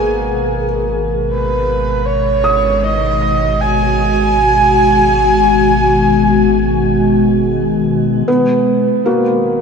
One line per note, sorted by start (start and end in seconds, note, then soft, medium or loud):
0.00 8.23 G#1 medium
0.00 9.62 B2 medium
0.00 9.62 D#3 medium
0.00 9.62 G#3 medium
0.00 0.64 A#3 medium
0.00 8.28 B3 medium
0.00 2.80 G#4 medium
0.00 0.53 G#5 loud
1.29 2.07 B4 medium
2.05 2.85 C#5 loud
2.44 4.10 D#6 medium
2.58 9.33 F#4 medium
2.84 3.62 D#5 loud
3.61 7.49 G#5 loud
8.27 9.62 G#1 medium
8.27 9.22 B3 medium
8.74 9.62 G#4 medium
9.05 9.62 A#3 medium
9.05 9.62 F#4 soft